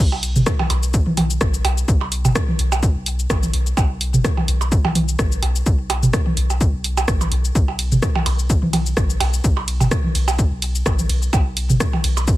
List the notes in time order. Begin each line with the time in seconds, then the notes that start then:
0.00 B1
0.12 percussion blips
0.23 open hi-hat, cabasa
0.36 F#1, mid tom, cabasa
0.46 kick, cross-stick, open hi-hat, cabasa
0.59 high tom, percussion blips
0.70 B1, open hi-hat, cabasa, percussion blips
0.83 cabasa
0.94 kick, cabasa
1.07 B1, high tom
1.17 open hi-hat, high tom, percussion blips, cabasa
1.30 cabasa
1.41 A1, kick, cross-stick, cabasa
1.54 cabasa
1.64 B1, open hi-hat, percussion blips
1.78 cabasa
1.88 B1, kick, cabasa
2.01 percussion blips
2.12 open hi-hat, cabasa
2.25 F#1, mid tom, percussion blips, cabasa
2.35 kick, cross-stick, open hi-hat, cabasa
2.48 high tom
2.59 B1, open hi-hat, cabasa
2.72 percussion blips, cabasa
2.83 kick, cabasa
2.96 B1
3.06 open hi-hat, cabasa
3.19 cabasa
3.30 A1, kick, cross-stick, percussion blips, cabasa
3.43 high tom, cabasa
3.54 B1, open hi-hat
3.67 cabasa
3.77 B1, kick, percussion blips, cabasa
4.01 open hi-hat, cabasa
4.14 F#1, mid tom, cabasa
4.24 kick, cross-stick, open hi-hat, cabasa
4.37 high tom, percussion blips
4.48 B1, open hi-hat, cabasa
4.61 cabasa, percussion blips
4.72 kick, cabasa
4.85 B1, high tom, percussion blips
4.95 open hi-hat, high tom, cabasa
5.08 cabasa
5.19 A1, kick, cross-stick, cabasa
5.32 cabasa
5.43 B1, open hi-hat, percussion blips
5.56 cabasa
5.66 B1, kick, cabasa
5.90 open hi-hat, percussion blips, cabasa
6.03 F#1, mid tom, cabasa
6.13 kick, cross-stick, open hi-hat, cabasa
6.26 high tom
6.37 B1, open hi-hat, cabasa
6.50 percussion blips, cabasa
6.61 kick, cabasa
6.74 B1
6.84 open hi-hat, cabasa
6.97 percussion blips, cabasa
7.08 A1, kick, cross-stick, cabasa
7.21 high tom, cabasa, percussion blips
7.32 B1, open hi-hat
7.45 cabasa
7.55 B1, kick, cabasa
7.68 percussion blips
7.79 open hi-hat, ride, cabasa
7.92 F#1, mid tom, cabasa
8.02 kick, cross-stick, open hi-hat, cabasa
8.15 high tom, percussion blips
8.26 B1, open hi-hat, ride, cabasa, percussion blips
8.39 cabasa
8.50 kick, cabasa
8.63 B1, high tom
8.73 open hi-hat, high tom, ride, percussion blips, cabasa
8.86 cabasa
8.97 A1, kick, cross-stick, cabasa
9.10 cabasa
9.20 B1, open hi-hat, ride, percussion blips
9.33 cabasa
9.44 B1, kick, cabasa
9.57 percussion blips
9.68 open hi-hat, ride, cabasa
9.80 F#1, mid tom, percussion blips, cabasa
9.91 kick, cross-stick, open hi-hat, cabasa
10.04 high tom
10.15 B1, open hi-hat, ride, cabasa
10.28 percussion blips, cabasa
10.39 kick, cabasa
10.52 B1
10.62 open hi-hat, ride, cabasa
10.75 cabasa
10.86 A1, kick, cross-stick, percussion blips, cabasa
10.99 high tom, cabasa
11.09 B1, open hi-hat, ride
11.22 cabasa
11.33 B1, kick, percussion blips, cabasa
11.57 open hi-hat, ride, cabasa
11.70 F#1, mid tom, cabasa
11.80 kick, cross-stick, open hi-hat, cabasa
11.93 high tom, percussion blips
12.04 B1, open hi-hat, ride, cabasa
12.17 cabasa, percussion blips
12.27 kick, cabasa